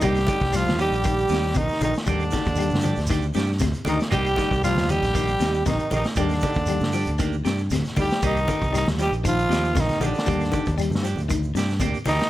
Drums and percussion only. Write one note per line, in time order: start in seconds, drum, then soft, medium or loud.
0.01 kick medium
0.01 closed hi-hat medium
0.01 high conga soft
0.01 low conga medium
0.01 shekere medium
0.15 snare soft
0.15 closed hi-hat soft
0.15 claves medium
0.15 shekere soft
0.27 kick medium
0.27 closed hi-hat medium
0.27 high conga medium
0.27 shekere medium
0.40 kick medium
0.40 snare soft
0.40 shekere soft
0.52 snare soft
0.52 closed hi-hat medium
0.52 high conga soft
0.52 claves medium
0.52 shekere medium
0.66 snare medium
0.66 high conga medium
0.66 shekere soft
0.78 closed hi-hat soft
0.78 shekere medium
0.92 closed hi-hat soft
0.92 shekere soft
1.03 kick medium
1.03 closed hi-hat medium
1.03 claves medium
1.03 shekere loud
1.18 closed hi-hat soft
1.18 shekere soft
1.29 closed hi-hat soft
1.29 shekere medium
1.33 snare medium
1.42 shekere soft
1.47 snare soft
1.54 kick medium
1.54 closed hi-hat medium
1.54 high conga medium
1.54 low conga medium
1.54 claves medium
1.54 shekere medium
1.68 closed hi-hat soft
1.68 shekere soft
1.72 snare soft
1.80 closed hi-hat medium
1.80 high conga medium
1.80 claves medium
1.80 shekere medium
1.94 snare medium
1.94 closed hi-hat soft
1.94 shekere soft
2.06 kick medium
2.06 closed hi-hat medium
2.06 high conga soft
2.06 low conga medium
2.06 shekere medium
2.19 closed hi-hat soft
2.19 claves medium
2.19 shekere soft
2.31 kick medium
2.31 closed hi-hat medium
2.31 high conga medium
2.31 shekere medium
2.35 snare soft
2.44 kick medium
2.44 closed hi-hat soft
2.44 shekere soft
2.56 high conga soft
2.56 claves medium
2.56 shekere medium
2.60 closed hi-hat medium
2.69 high conga medium
2.69 shekere soft
2.75 snare medium
2.81 high conga medium
2.81 shekere medium
2.85 closed hi-hat medium
2.95 closed hi-hat soft
2.95 shekere soft
3.00 snare soft
3.06 kick medium
3.06 high conga soft
3.06 shekere medium
3.11 snare soft
3.11 closed hi-hat medium
3.11 claves medium
3.22 shekere soft
3.34 snare medium
3.34 closed hi-hat medium
3.34 shekere medium
3.46 shekere soft
3.52 snare soft
3.59 kick medium
3.59 snare soft
3.59 closed hi-hat medium
3.59 high conga medium
3.59 low conga medium
3.59 claves medium
3.59 shekere medium
3.73 closed hi-hat soft
3.73 shekere soft
3.85 closed hi-hat medium
3.85 high conga medium
3.85 claves medium
3.85 shekere medium
4.00 snare medium
4.00 closed hi-hat soft
4.00 shekere soft
4.12 kick medium
4.12 closed hi-hat medium
4.12 high conga soft
4.12 low conga medium
4.12 shekere medium
4.26 closed hi-hat soft
4.26 claves medium
4.26 shekere soft
4.36 kick medium
4.36 snare soft
4.36 closed hi-hat medium
4.36 high conga medium
4.36 shekere medium
4.51 kick medium
4.51 shekere soft
4.63 snare soft
4.63 closed hi-hat medium
4.63 high conga soft
4.63 claves medium
4.63 shekere medium
4.75 snare medium
4.75 high conga medium
4.75 shekere soft
4.88 closed hi-hat medium
4.88 high conga medium
4.88 shekere medium
5.02 snare soft
5.02 closed hi-hat soft
5.02 low conga medium
5.02 shekere soft
5.15 kick medium
5.15 snare soft
5.15 closed hi-hat medium
5.15 high conga soft
5.15 claves medium
5.15 shekere loud
5.28 closed hi-hat soft
5.28 shekere soft
5.40 snare medium
5.40 closed hi-hat soft
5.40 shekere medium
5.54 shekere soft
5.66 kick medium
5.66 snare soft
5.66 closed hi-hat medium
5.66 high conga medium
5.66 low conga medium
5.66 claves medium
5.66 shekere medium
5.79 closed hi-hat soft
5.79 shekere soft
5.91 closed hi-hat soft
5.91 high conga medium
5.91 claves medium
5.91 shekere medium
6.04 snare medium
6.04 closed hi-hat soft
6.04 shekere soft
6.15 kick medium
6.15 closed hi-hat medium
6.15 high conga soft
6.15 low conga medium
6.15 shekere medium
6.29 snare soft
6.29 closed hi-hat soft
6.29 claves medium
6.29 shekere soft
6.41 kick medium
6.41 closed hi-hat medium
6.41 high conga loud
6.41 shekere medium
6.54 kick medium
6.54 closed hi-hat soft
6.54 shekere soft
6.66 closed hi-hat medium
6.66 high conga soft
6.66 claves medium
6.66 shekere medium
6.79 snare medium
6.79 high conga medium
6.79 shekere soft
6.92 open hi-hat medium
6.92 shekere medium
7.06 closed hi-hat soft
7.06 low conga medium
7.06 shekere soft
7.19 kick medium
7.19 closed hi-hat medium
7.19 high conga soft
7.19 claves medium
7.19 shekere medium
7.32 shekere soft
7.45 snare medium
7.45 closed hi-hat medium
7.45 shekere medium
7.58 shekere soft
7.70 snare soft
7.70 closed hi-hat medium
7.70 high conga medium
7.70 low conga medium
7.70 claves medium
7.70 shekere medium
7.84 snare soft
7.84 closed hi-hat soft
7.84 shekere soft
7.96 kick medium
7.96 open hi-hat medium
7.96 high conga medium
7.96 claves medium
7.96 shekere medium
8.10 snare medium
8.10 closed hi-hat soft
8.10 shekere soft
8.22 kick loud
8.22 closed hi-hat medium
8.22 high conga soft
8.22 low conga medium
8.22 shekere medium
8.36 closed hi-hat soft
8.36 claves medium
8.36 shekere soft
8.48 kick medium
8.48 closed hi-hat medium
8.48 high conga medium
8.48 shekere medium
8.62 kick medium
8.62 shekere soft
8.73 snare soft
8.73 closed hi-hat medium
8.73 high conga soft
8.73 claves medium
8.73 shekere medium
8.87 snare medium
8.87 high conga medium
8.87 shekere soft
8.98 snare soft
8.98 closed hi-hat medium
8.98 shekere medium
9.13 closed hi-hat soft
9.13 shekere soft
9.25 kick medium
9.25 closed hi-hat medium
9.25 claves medium
9.25 shekere loud
9.39 closed hi-hat soft
9.39 shekere soft
9.51 snare medium
9.51 closed hi-hat medium
9.51 shekere medium
9.64 shekere soft
9.75 kick medium
9.75 snare soft
9.75 closed hi-hat medium
9.75 high conga medium
9.75 low conga medium
9.75 claves medium
9.75 shekere loud
9.89 snare soft
9.89 closed hi-hat soft
9.89 high conga medium
9.89 shekere soft
10.01 closed hi-hat soft
10.01 high conga medium
10.01 claves medium
10.01 shekere medium
10.14 closed hi-hat soft
10.14 shekere soft
10.19 snare medium
10.26 kick medium
10.26 closed hi-hat medium
10.26 high conga soft
10.26 low conga medium
10.26 shekere medium
10.40 snare soft
10.40 closed hi-hat soft
10.40 claves medium
10.40 shekere soft
10.52 kick medium
10.52 closed hi-hat medium
10.52 high conga medium
10.52 shekere medium
10.65 kick medium
10.65 closed hi-hat soft
10.65 shekere soft
10.78 closed hi-hat medium
10.78 claves medium
10.78 shekere medium
10.90 high conga medium
10.90 shekere soft
10.95 snare medium
11.04 closed hi-hat soft
11.04 shekere medium
11.16 low conga medium
11.16 shekere soft
11.20 closed hi-hat soft
11.28 kick medium
11.28 closed hi-hat medium
11.28 high conga soft
11.28 claves medium
11.28 shekere medium
11.43 shekere soft
11.56 snare medium
11.56 closed hi-hat medium
11.56 shekere medium
11.69 snare soft
11.69 shekere soft
11.80 kick medium
11.80 closed hi-hat medium
11.80 high conga medium
11.80 low conga medium
11.80 claves medium
11.80 shekere medium
11.94 closed hi-hat soft
11.94 shekere soft
12.05 snare soft
12.05 closed hi-hat medium
12.05 high conga medium
12.05 claves medium
12.05 shekere medium
12.19 snare medium
12.19 closed hi-hat soft
12.19 shekere soft